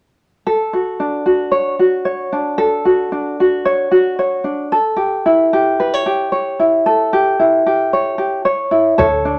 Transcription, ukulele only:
0.47 A4
0.73 F#4
1.00 D4
1.26 F#4
1.52 C#5
1.79 F#4
2.05 C#5
2.32 D4
2.58 A4
2.85 F#4
3.12 D4
3.40 F#4
3.65 C#5
3.91 F#4
4.19 C#5
4.44 D4
4.72 A4
4.97 G4
5.26 E4
5.53 G4
5.80 B4
5.94 C#5
6.06 G4
6.32 C#5
6.59 E4
6.86 A4
7.13 G4
7.39 E4
7.66 G4
7.93 C#5
8.18 G4
8.45 C#5
8.71 E4
8.98 A4 C#5
9.25 D4

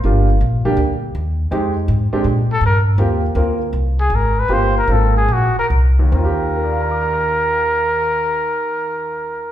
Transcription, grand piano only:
0.05 G3 A#3 D4 F4
0.65 G3 A#3 D4 G4
1.51 G#3 C4 D#4 G4
2.13 G#3 C4 D4 G4
2.98 A#3 C4 F4 G4
3.36 A#3 C4 F4 A#4
4.49 A#3 C4 F4 G4
4.88 A#3 C4 F4 A#4
5.99 D#2
6.06 D#3
6.12 C4
6.18 F4
6.25 G4
6.56 A#4
6.64 D5
6.72 F5
6.81 A#5
6.91 D6
7.02 F6
7.13 A#6

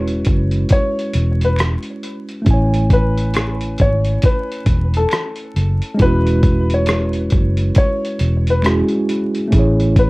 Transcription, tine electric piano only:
Already playing: G#3 C#4 E4 F#4 B4
2.42 A3 C#4
2.48 E4 G#5
2.54 C#5
5.94 G#3 C#4
6.00 E4 F#4
6.06 B4
8.63 G#3 C#4 E4
8.67 F#4 G#4
9.48 A3 C#4
9.53 E4 G#4
9.59 C#5

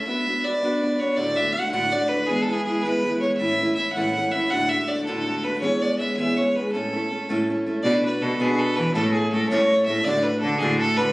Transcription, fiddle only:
0.07 E5
0.44 D5
0.99 C#5
1.16 D5
1.36 E5
1.53 F#5
1.71 F#5
1.92 D5
2.08 B4
2.27 G#4
2.42 A4
2.53 G#4
2.65 G#4
2.82 B4
3.20 C#5
3.37 E5
3.75 E5
3.92 F#5
4.31 E5
4.50 F#5
4.69 E5
4.87 D5
5.05 A4
5.44 B4
5.60 C#5
5.82 D5
5.99 E5
6.16 E5
6.37 C#5
6.51 C#5
6.56 B4
6.72 A4
7.83 D5
8.05 B4
8.22 A4
8.41 G#4
8.59 A4
8.76 B4
8.94 A4
9.12 G#4
9.32 A4
9.49 C#5
9.86 E5
10.04 D5
10.23 B4
10.40 A4
10.58 G#4
10.79 A4
10.97 B4

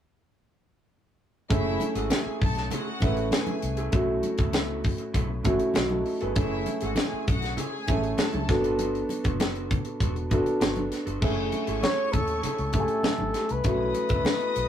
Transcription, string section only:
1.50 E4 E5
1.96 F#4 F#5
2.11 G#4 G#5
2.41 A4 A5
2.72 F#4 F#5
3.33 G#4 G#5
6.36 E4 E5
6.83 F#4 F#5
6.98 G#4 G#5
7.28 F#4 F#5
7.58 G#4 G#5
8.19 A4 A5
11.22 C#5 C#6
13.65 D#5 D#6

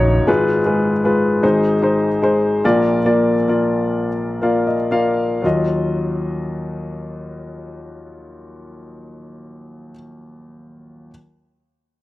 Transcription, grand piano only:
Already playing: F#1 F#2 F#3 D#4 C#5
0.27 G#1 G#2 G#3 F4 B4
0.65 G#3 F4 B4
1.04 G#3 F4 B4
1.43 G#1 G#2 G#3 D#4 C5
1.82 G#3 D#4 C5
2.22 G#3 D#4 C5
2.64 A#1 A#2 A#3 F4 D5
3.05 A#3 F4 D5
3.48 A#3 F4 D5
4.42 A#3 F4 D5 F5
4.67 D#5
4.91 A#3 F4 D5 F5
5.42 D#2 F#3 F4 D#5

